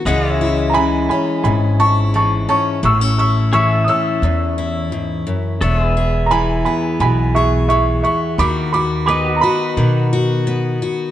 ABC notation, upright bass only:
X:1
M:4/4
L:1/8
Q:1/4=86
K:E
V:1 name="Upright bass" clef=bass
C,,4 G,,,4 | A,,,4 E,,4 | E,,,4 B,,,4 | D,,4 B,,4 |]